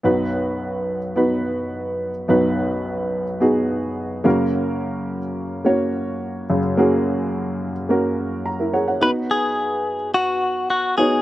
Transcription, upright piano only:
<<
  \new Staff \with { instrumentName = "Upright piano" } { \time 4/4 \key b \major \tempo 4 = 107 << { r1 | r1 | r1 | r2. ais''16 <e' ais'>16 <gis' cis'' fis''>16 <cis'' fis''>16~ |
<cis'' fis''>16 r2. r8. | } \\ { <b dis' fis' b'>4. r8 <b dis' fis' b'>4. r8 | <b dis' fis' b'>4. r8 <b dis' fis' gis'>4. <ais cis' fis' ais'>8~ | <ais cis' fis' ais'>4 r4 <ais cis' fis' cis''>4. r8 | <ais cis' fis' gis'>4. r8 <ais cis' fis' ais'>4. r8 |
<b dis' fis' b'>4. r2 <b dis' fis' cis''>8 | } >> }
  \new Staff \with { instrumentName = "Upright piano" } { \clef bass \time 4/4 \key b \major <b,, fis,>1 | <b,, fis,>2.~ <b,, fis,>8 <fis, cis>8~ | <fis, cis>2.~ <fis, cis>8 <fis, cis>8~ | <fis, cis>2.~ <fis, cis>8 r8 |
r1 | }
>>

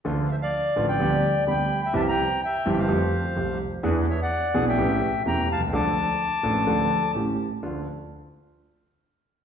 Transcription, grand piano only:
\new Staff \with { instrumentName = "Grand piano" } { \clef bass \time 4/4 \key d \minor \tempo 4 = 127 <d, d f a f'>8 r4 <a,, a, d f a f'>8 <d, d g b g'>8 r8 <d, d g b g'>8 r8 | <c, c e g c' g'>8 r4 <g,, g, e g c' g'>8 <f, f a c' g'>8 r8 <c, c f a c' g'>8 r8 | <e, e b d' gis'>8 r4 <b,, b, e b d' gis'>8 <a,, a, e a cis' g'>8 r8 <e,, e, e a cis' g'>8 r32 b,,32 c,32 cis,32 | <d, d f a d' a'>8 r4 <a,, a, f a d' a'>8 <d, d f a d' a'>8 r8 <a,, a, e a cis' g'>8 r8 |
<d, a d' f'>8 r2. r8 | }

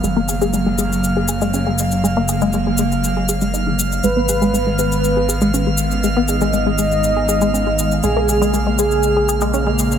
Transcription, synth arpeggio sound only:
\new Staff \with { instrumentName = "Synth arpeggio sound" } { \clef bass \time 4/4 \key gis \dorian \tempo 4 = 120 gis16 ais16 gis'16 gis16 gis16 gis16 gis16 r8 gis'16 gis'16 gis16 cis'16 gis16 r8 | gis16 ais16 gis'16 gis16 gis16 gis16 gis16 r8 gis'16 gis'16 gis16 dis'16 dis16 r8 | gis16 b16 gis'16 gis16 gis16 gis16 gis16 r8 gis'16 gis'16 gis16 cis'16 gis16 r8 | gis16 b16 gis'16 gis16 gis16 gis16 gis16 r8 gis'16 gis'16 gis16 cis'16 gis16 r8 |
gis16 ais16 gis'16 gis16 gis16 gis16 gis16 r8 gis'16 gis'16 gis16 cis'16 gis16 r8 | }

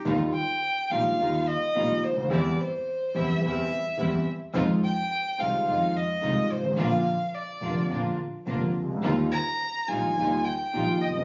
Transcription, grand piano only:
\new Staff \with { instrumentName = "Grand piano" } { \clef bass \time 4/4 \key ees \major \tempo 4 = 107 <ees, ees g bes f'>8 r4 <bes,, bes, ees g bes f'>8 <ees, ees g bes f'>8 r8 <bes,, bes, ees g bes f'>8 r32 des,32 d,32 ees,32 | <e, e g c' g'>8 r4 <e, e g c' g'>8 <e, e g c' g'>8 r8 <e, e g c' g'>8 r8 | <f, ees f aes c' f'>8 r4 <c, c ees aes c' f'>8 <f, ees f aes c' f'>8 r8 <c, c ees aes c' f'>8 r32 g,,32 aes,,32 a,,32 | <bes,, bes, d f bes f'>8 r4 <f,, f, d f bes f'>8 <bes,, bes, d f bes f'>8 r8 <f,, f, d f bes f'>8 r32 c,32 des,32 d,32 |
<ees, ees g bes f'>8 r4 <bes,, bes, ees g bes f'>8 <ees, ees g bes f'>8 r8 <bes,, bes, ees g bes f'>8 r32 f,,32 ges,,32 r32 | }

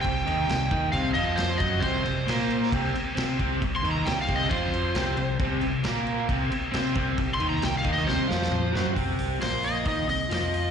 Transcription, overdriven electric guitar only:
\new Staff \with { instrumentName = "Overdriven electric guitar" } { \clef bass \time 4/4 \key c \minor \tempo 4 = 135 c8 <ees ees'>8 c8 <ees ees'>8 <c c'>8 <f f'>4 <fis fis'>8 | <c c'>8 c8 <bes bes'>4 <c c'>8 r8 <c' c''>8 <c c'>8 | c8 <ees ees'>8 c8 <c c'>8 <f f'>4 <c c'>8 c8 | <c c'>8 c8 <bes bes'>4 <c c'>8 r8 <c' c''>8 <c c'>8 |
c8 <ees ees'>8 c8 <ees ees'>8 <c c'>8 <f f'>4 <fis fis'>8 | <c c'>4 <bes, bes>4 <ees ees'>8 c8 <f f'>4 | }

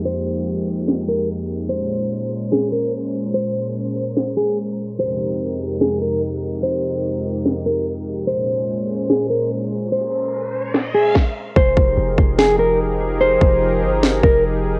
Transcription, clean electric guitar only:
\new Staff \with { instrumentName = "Clean electric guitar" } { \time 4/4 \key f \minor \tempo 4 = 146 c''2~ c''8 bes'8 r4 | c''2 aes'8 bes'8 r4 | c''2~ c''8 aes'8 r4 | c''2 aes'8 bes'8 r4 |
c''2~ c''8 bes'8 r4 | c''2 aes'8 bes'8 r4 | c''2~ c''8 aes'8 r4 | c''2 aes'8 bes'8 r4 |
c''2~ c''8 bes'8 r4 | }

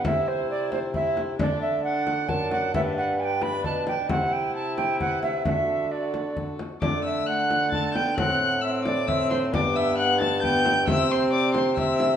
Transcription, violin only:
\new Staff \with { instrumentName = "Violin" } { \time 3/4 \key d \mixolydian \tempo 4 = 133 c''2 c''4 | a'4 a'4 a'4 | b'4 b'2 | c''2 b'4 |
a'4 a'4. r8 | d'''8 e'''8 fis'''4 a'''8 g'''8 | fis'''4 e'''8 d'''8 e'''8 c'''8 | d'''8 e'''8 fis'''8 a'''8 g'''4 |
e'''8 c'''8 d'''8 c'''8 e'''4 | }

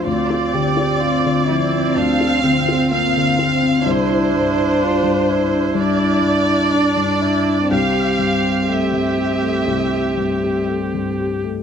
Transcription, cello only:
\new Staff \with { instrumentName = "Cello" } { \time 4/4 \key d \minor \tempo 4 = 63 f'8 g'8 f'8 e'8 d'8 c'8 bes8 c'8 | e'4 f'8 e'4. d'8 e'8 | c'2.~ c'8 r8 | }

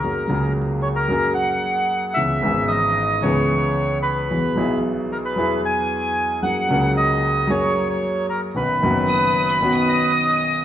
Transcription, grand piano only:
\new Staff \with { instrumentName = "Grand piano" } { \time 4/4 \key fis \mixolydian \tempo 4 = 113 <fis, fis ais cis' gis'>8 <cis, cis fis ais cis' gis'>4. <fis, fis ais cis' gis'>2 | <cis, cis e b cis' gis'>8 <gis,, gis, e b cis' gis'>4. <cis, cis e b cis' gis'>2 | <e, e fis b e' gis'>8 <b,, b, fis b e' gis'>4. <e, e fis b e' gis'>2 | <fis, fis ais cis' gis'>8 <cis, cis fis ais cis' gis'>4. <fis, fis ais cis' gis'>2 |
<b,, b, dis b cis' fis'>8 <fis,, fis, dis b cis' fis'>4. <b,, b, dis b cis' fis'>2 | }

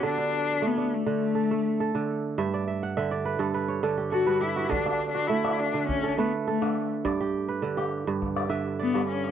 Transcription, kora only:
<<
  \new Staff \with { instrumentName = "Kora" } { \time 4/4 \key d \major \tempo 4 = 103 << { fis'16 r2. r8. | e''16 d''16 e''16 fis''16 e''16 d''16 b'16 a'16 b'16 cis''16 a'16 g'16 a'16 b'16 g'16 fis'16~ | fis'16 r2. r8. | r1 | } \\ { a'16 d'8. r16 d'8. r16 a'8. a'8. r16 | r1 | a'16 d'8 fis'8 d'8. r16 a'16 b'8 a'8. r16 | d''16 g'8 b'8 g'8. r16 d''16 e''8 d''8. r16 | } >> }
  \new Staff \with { instrumentName = "Kora" } { \clef bass \time 4/4 \key d \major d8 r8 a8 r16 d8 r16 a8 r16 d8 r16 | g,8 r8 d8 r16 g,8 r16 d8 r16 g,8 r16 | d8 r8 a8 r16 d8 r16 a8 r16 d8 r16 | g,8 r8 d8 r16 g,8 r16 d8 r16 g,8 r16 | }
>>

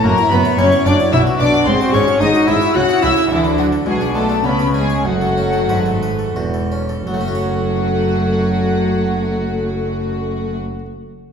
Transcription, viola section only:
\new Staff \with { instrumentName = "Viola section" } { \time 3/4 \key fis \minor \tempo 4 = 96 fis'16 e'16 fis'16 e'16 fis'16 e'16 fis'16 e'16 d'16 fis'16 d'16 fis'16 | gis'16 fis'16 gis'16 fis'16 gis'16 fis'16 gis'16 fis'16 cis'16 e'16 cis'16 e'16 | d'4 d'4 cis'4 | a2~ a8. r16 |
a2.~ | a2. | }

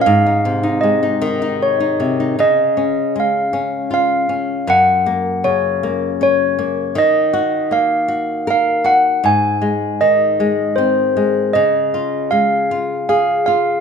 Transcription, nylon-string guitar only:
\new Staff \with { instrumentName = "Nylon-string guitar" } { \time 3/4 \key des \major \tempo 4 = 78 aes,16 ees'16 c16 ees'16 aes16 ees'16 ees16 ees'8 ees'16 c16 ees'16 | des8 des'8 aes8 des'8 f'8 des'8 | ges,8 bes8 des8 bes8 des'8 bes8 | ees8 ges'8 bes8 ges'8 bes'8 ges'8 |
aes,8 aes8 ees8 aes8 c'8 aes8 | des8 f'8 aes8 f'8 aes'8 f'8 | }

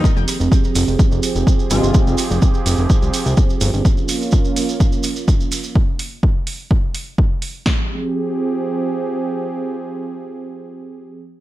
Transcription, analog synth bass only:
\new Staff \with { instrumentName = "Analog synth bass" } { \clef bass \time 4/4 \key f \minor \tempo 4 = 126 r16 f,,16 r16 f,,16 r8 f,,16 f,,16 r16 f,,16 r16 f,,16 r8 g,,16 g,,16 | r16 f,,16 r16 f,,16 r8 f,,16 f,,16 r16 c,16 r16 c,16 r8 g,,16 g,,16 | r1 | r1 |
r1 | r1 | }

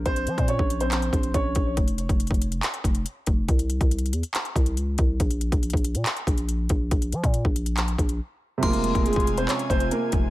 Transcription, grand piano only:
\new Staff \with { instrumentName = "Grand piano" } { \time 4/4 \key bes \dorian \tempo 4 = 140 <c' c''>4 <des' des''>8. <c' c''>4~ <c' c''>16 <des' des''>4 | r1 | r1 | r1 |
r1 | <bes bes'>4 <aes aes'>8. <c' c''>16 <des' des''>8 <c' c''>8 <bes bes'>8 r8 | }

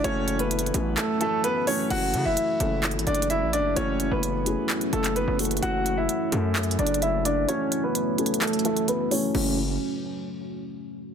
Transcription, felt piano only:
\new Staff \with { instrumentName = "Felt piano" } { \time 4/4 \key fis \minor \tempo 4 = 129 <e a cis' fis' a'>4 r8 <e a cis' fis' a'>4 <e a cis' fis' a'>4 <e a cis' fis' a'>8 | <e a cis' fis' a'>4 r8 <e a cis' fis' a'>4. r4 | <e a cis' fis' a'>4 r8 <e a cis' fis' gis'>4 <e a cis' fis' a'>4 <e a cis' fis' a'>8 | <e a cis' fis' a'>4 r8 <e a cis' fis' a'>4. r4 |
<e a cis' fis' a'>4 r8 <e a cis' fis' a'>4 <e a cis' fis' a'>4 <e a cis' fis' a'>8 | <e a cis' fis'>8 r2. r8 | }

